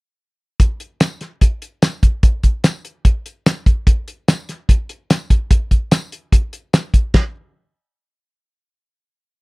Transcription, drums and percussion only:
0.60 kick, closed hi-hat
0.80 closed hi-hat
1.00 snare, closed hi-hat, tambourine
1.21 snare, closed hi-hat
1.41 kick, closed hi-hat
1.62 closed hi-hat
1.82 snare, closed hi-hat, tambourine
2.03 kick, closed hi-hat
2.23 kick, closed hi-hat
2.43 kick, closed hi-hat
2.64 snare, closed hi-hat, tambourine
2.85 closed hi-hat
3.05 kick, closed hi-hat
3.26 closed hi-hat
3.46 snare, closed hi-hat, tambourine
3.66 kick, closed hi-hat
3.87 kick, closed hi-hat
4.08 closed hi-hat
4.28 snare, closed hi-hat, tambourine
4.49 snare, closed hi-hat
4.69 kick, closed hi-hat
4.89 closed hi-hat
5.10 snare, closed hi-hat, tambourine
5.30 kick, closed hi-hat
5.51 kick, closed hi-hat
5.71 kick, closed hi-hat
5.91 snare, closed hi-hat, tambourine
6.12 closed hi-hat
6.32 kick, closed hi-hat
6.53 closed hi-hat
6.73 snare, closed hi-hat, tambourine
6.94 kick, closed hi-hat
7.14 kick, snare, ride bell

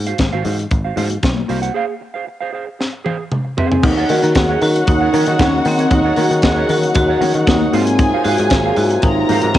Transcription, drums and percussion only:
0.07 closed hi-hat
0.18 kick, snare, closed hi-hat, high conga
0.44 open hi-hat, low conga
0.59 closed hi-hat
0.71 kick, closed hi-hat
0.97 open hi-hat, muted conga, low conga
1.10 closed hi-hat
1.23 kick, snare, closed hi-hat, high conga
1.37 high conga
1.49 open hi-hat
1.63 closed hi-hat, high conga
2.81 snare
3.06 high tom
3.32 mid tom
3.58 floor tom
3.72 floor tom
3.83 kick, crash, muted conga
4.09 open hi-hat, muted conga
4.23 closed hi-hat
4.35 kick, snare, closed hi-hat, high conga
4.61 open hi-hat
4.76 closed hi-hat
4.86 kick, closed hi-hat, muted conga
5.13 open hi-hat, muted conga, low conga
5.26 closed hi-hat
5.39 kick, snare, closed hi-hat, high conga
5.53 high conga
5.65 open hi-hat
5.79 closed hi-hat
5.91 kick, closed hi-hat, muted conga
6.16 open hi-hat, muted conga
6.31 closed hi-hat
6.42 kick, snare, closed hi-hat, high conga
6.69 open hi-hat, low conga
6.83 closed hi-hat
6.94 kick, closed hi-hat, muted conga
7.22 open hi-hat, muted conga, low conga
7.34 closed hi-hat
7.47 kick, snare, closed hi-hat, high conga
7.61 high conga
7.73 open hi-hat
7.87 closed hi-hat
7.98 kick, closed hi-hat, muted conga
8.24 open hi-hat, muted conga
8.38 closed hi-hat
8.50 kick, snare, closed hi-hat, high conga
8.76 open hi-hat
8.91 closed hi-hat
9.02 kick, closed hi-hat
9.29 open hi-hat, muted conga, low conga
9.42 closed hi-hat
9.54 kick, closed hi-hat, high conga

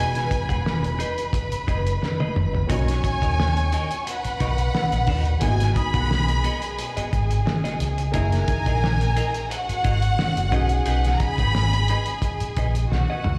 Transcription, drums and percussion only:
0.15 snare, closed hi-hat
0.31 kick, closed hi-hat
0.49 kick, closed hi-hat
0.66 snare
0.84 closed hi-hat
1.00 closed hi-hat
1.18 closed hi-hat
1.33 kick, closed hi-hat
1.52 closed hi-hat
1.68 kick, closed hi-hat
1.86 closed hi-hat
2.03 snare
2.20 high tom
2.36 mid tom
2.54 floor tom
2.70 kick, closed hi-hat
2.88 snare, closed hi-hat
3.04 kick, closed hi-hat
3.22 kick, closed hi-hat
3.40 snare
3.57 closed hi-hat
3.72 closed hi-hat
3.91 closed hi-hat
4.07 closed hi-hat
4.24 closed hi-hat
4.40 kick, closed hi-hat
4.58 closed hi-hat
4.75 snare
4.92 closed hi-hat
5.07 kick, open hi-hat
5.25 closed hi-hat
5.41 kick, closed hi-hat
5.60 snare, closed hi-hat
5.76 kick, closed hi-hat
5.94 kick, closed hi-hat
6.11 snare
6.28 closed hi-hat
6.44 closed hi-hat
6.62 closed hi-hat
6.79 closed hi-hat
6.97 closed hi-hat
7.13 kick, closed hi-hat
7.31 closed hi-hat
7.47 snare
7.65 snare, closed hi-hat
7.80 closed hi-hat
7.98 closed hi-hat
8.14 kick, closed hi-hat
8.32 snare, closed hi-hat
8.48 kick, closed hi-hat
8.66 kick, closed hi-hat
8.84 snare
9.01 closed hi-hat
9.17 closed hi-hat
9.34 closed hi-hat
9.51 closed hi-hat
9.69 closed hi-hat
9.84 kick, closed hi-hat
10.02 closed hi-hat
10.19 snare
10.37 closed hi-hat
10.52 kick, closed hi-hat
10.69 closed hi-hat
10.86 closed hi-hat
11.04 snare, closed hi-hat
11.20 kick, closed hi-hat
11.38 kick, closed hi-hat
11.55 snare
11.73 closed hi-hat
11.88 closed hi-hat
12.06 closed hi-hat
12.22 kick, closed hi-hat
12.40 closed hi-hat
12.57 kick, closed hi-hat
12.75 closed hi-hat
12.92 snare
13.24 mid tom

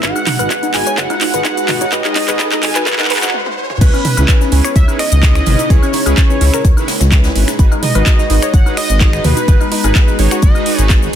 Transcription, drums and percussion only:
0.03 kick, clap, closed hi-hat, shaker
0.16 high woodblock, shaker
0.27 clap, open hi-hat, mid tom, high conga
0.39 closed hi-hat, high woodblock, shaker
0.50 kick, clap, closed hi-hat, shaker
0.63 closed hi-hat, high conga, shaker
0.74 clap, open hi-hat
0.87 closed hi-hat, shaker
0.98 kick, clap, closed hi-hat, shaker
1.10 closed hi-hat, high conga, high woodblock, shaker
1.21 clap, open hi-hat
1.34 closed hi-hat, shaker
1.45 kick, clap, closed hi-hat, high conga, shaker
1.57 closed hi-hat, shaker
1.69 clap, open hi-hat, mid tom
1.81 closed hi-hat, high conga, shaker
1.92 kick, clap, closed hi-hat, shaker
2.05 clap, high woodblock, shaker
2.16 clap, open hi-hat, high conga
2.28 clap, closed hi-hat, high woodblock, shaker
2.39 kick, clap, closed hi-hat, shaker
2.52 clap, closed hi-hat, high conga, shaker
2.63 clap, open hi-hat
2.75 clap, closed hi-hat, shaker
2.87 kick, clap, closed hi-hat, shaker
2.93 clap
2.99 clap, closed hi-hat, high conga, high woodblock, shaker
3.05 clap
3.10 clap, open hi-hat
3.16 clap
3.23 clap, closed hi-hat, shaker
3.28 clap
3.34 high tom
3.46 high tom
3.70 mid tom
3.81 kick, closed hi-hat, crash, shaker
3.94 high woodblock, shaker
4.05 closed hi-hat, open hi-hat, mid tom, high conga
4.17 closed hi-hat, high woodblock, shaker
4.28 kick, snare, clap, closed hi-hat, shaker
4.41 snare, high conga, shaker
4.52 closed hi-hat, open hi-hat
4.65 finger snap, closed hi-hat, shaker
4.76 kick, closed hi-hat, shaker
4.88 high conga, high woodblock, shaker
4.99 finger snap, closed hi-hat, open hi-hat
5.12 closed hi-hat, shaker
5.23 kick, snare, clap, closed hi-hat, high conga, shaker
5.35 finger snap, snare, shaker
5.46 closed hi-hat, open hi-hat, mid tom
5.59 closed hi-hat, high conga, shaker
5.70 kick, closed hi-hat, shaker
5.82 closed hi-hat, high woodblock, shaker
5.93 closed hi-hat, open hi-hat, high conga
6.06 closed hi-hat, high woodblock, shaker
6.17 kick, snare, clap, closed hi-hat, shaker
6.30 closed hi-hat, high conga, shaker
6.41 closed hi-hat, open hi-hat
6.54 finger snap, closed hi-hat, shaker
6.64 kick, closed hi-hat, shaker
6.77 high conga, high woodblock, shaker
6.88 snare, closed hi-hat, open hi-hat
7.00 snare, closed hi-hat, shaker
7.11 kick, snare, clap, closed hi-hat, high conga, shaker
7.24 snare, closed hi-hat, shaker
7.36 closed hi-hat, open hi-hat
7.48 finger snap, snare, closed hi-hat, high conga, shaker
7.59 kick, closed hi-hat, shaker
7.72 high woodblock, shaker
7.83 closed hi-hat, open hi-hat, mid tom, high conga
7.95 closed hi-hat, high woodblock, shaker
8.06 kick, snare, clap, closed hi-hat, shaker
8.19 snare, high conga, shaker
8.30 closed hi-hat, open hi-hat
8.42 finger snap, closed hi-hat, shaker
8.54 kick, closed hi-hat, shaker
8.66 high conga, high woodblock, shaker
8.77 finger snap, closed hi-hat, open hi-hat
8.90 closed hi-hat, shaker
9.00 kick, snare, clap, closed hi-hat, high conga, shaker
9.13 finger snap, snare, shaker
9.24 closed hi-hat, open hi-hat, mid tom
9.37 closed hi-hat, high conga, shaker
9.48 kick, closed hi-hat, shaker
9.60 closed hi-hat, high woodblock, shaker
9.72 closed hi-hat, open hi-hat, high conga
9.84 closed hi-hat, high woodblock, shaker
9.95 kick, snare, clap, closed hi-hat, shaker
10.08 closed hi-hat, high conga, shaker
10.19 closed hi-hat, open hi-hat
10.31 finger snap, closed hi-hat, shaker
10.42 kick, closed hi-hat, shaker
10.55 high conga, high woodblock, shaker
10.66 closed hi-hat, open hi-hat
10.79 closed hi-hat, shaker
10.90 kick, snare, clap, closed hi-hat, high conga, shaker
11.02 shaker

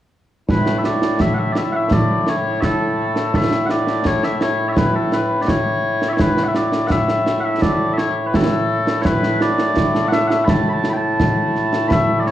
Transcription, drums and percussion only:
0.49 concert bass drum, snare
0.66 snare
0.84 snare
1.02 snare
1.20 concert bass drum, snare
1.55 snare
1.91 concert bass drum, snare
2.27 snare
2.62 concert bass drum, snare
3.16 snare
3.34 concert bass drum, snare
3.51 snare
3.70 snare
3.87 snare
4.05 concert bass drum, snare
4.23 snare
4.41 snare
4.77 concert bass drum, snare
5.12 snare
5.48 concert bass drum, snare
6.02 snare
6.19 concert bass drum, snare
6.37 snare
6.55 snare
6.72 snare
6.90 concert bass drum, snare
7.08 snare
7.27 snare
7.62 concert bass drum, snare
7.98 snare
8.34 concert bass drum, snare
8.87 snare
9.05 concert bass drum, snare
9.23 snare
9.41 snare
9.58 snare
9.77 concert bass drum, snare
9.95 snare
10.12 snare
10.31 snare
10.48 concert bass drum, snare
10.84 snare
11.20 concert bass drum, snare
11.55 snare
11.73 snare
11.91 concert bass drum, snare
12.27 snare

